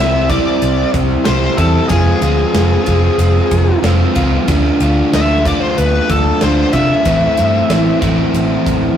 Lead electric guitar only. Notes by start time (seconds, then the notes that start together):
Already playing: E5
0.30 D5
1.25 C5
1.57 A4
1.89 G#4
5.15 E5
5.47 D5
5.60 C5
5.78 B4
6.11 A4
6.42 C5
6.73 E5